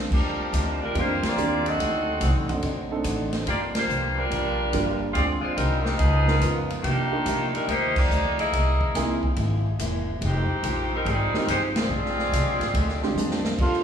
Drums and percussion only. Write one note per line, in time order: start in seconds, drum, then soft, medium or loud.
0.11 kick medium
0.11 crash medium
0.53 kick soft
0.53 hi-hat pedal medium
0.53 ride medium
0.95 kick soft
0.95 ride medium
1.23 snare medium
1.23 ride medium
1.38 hi-hat pedal medium
1.66 ride medium
1.79 kick soft
1.79 ride medium
2.21 kick soft
2.21 hi-hat pedal medium
2.21 ride medium
2.49 ride medium
2.62 kick soft
2.62 ride medium
3.04 kick soft
3.04 hi-hat pedal medium
3.04 ride medium
3.33 snare medium
3.33 ride medium
3.47 kick soft
3.47 ride medium
3.75 snare medium
3.75 ride medium
3.89 hi-hat pedal medium
4.31 kick soft
4.31 ride medium
4.73 kick soft
4.73 hi-hat pedal soft
4.73 ride medium
5.15 kick soft
5.15 ride medium
5.57 kick soft
5.57 hi-hat pedal medium
5.57 ride medium
5.85 snare medium
5.99 kick soft
5.99 ride medium
6.27 snare medium
6.41 kick soft
6.41 hi-hat pedal medium
6.41 ride medium
6.70 ride medium
6.84 kick soft
6.84 ride medium
7.26 kick soft
7.26 hi-hat pedal medium
7.26 ride medium
7.55 ride medium
7.68 kick soft
7.68 ride medium
7.96 kick medium
7.96 crash medium
8.11 hi-hat pedal medium
8.39 ride medium
8.53 kick soft
8.53 ride medium
8.81 kick medium
8.95 kick soft
8.95 snare soft
8.95 hi-hat pedal medium
8.95 ride medium
9.23 kick medium
9.36 kick soft
9.36 ride medium
9.79 kick soft
9.79 hi-hat pedal medium
9.79 ride medium
10.21 kick soft
10.21 ride medium
10.63 kick soft
10.63 hi-hat pedal medium
10.63 ride medium
11.06 kick soft
11.06 ride medium
11.34 snare medium
11.48 kick soft
11.48 hi-hat pedal medium
11.48 ride medium
11.76 snare medium
11.76 ride medium
12.05 snare soft
12.19 snare soft
12.32 kick soft
12.32 hi-hat pedal medium
12.32 ride medium
12.61 snare soft
12.61 ride soft
12.74 kick soft
12.74 ride medium
12.89 snare soft
13.03 snare medium
13.17 hi-hat pedal medium
13.17 high tom soft
13.31 snare medium
13.44 snare medium
13.58 kick medium
13.58 crash medium
13.73 snare soft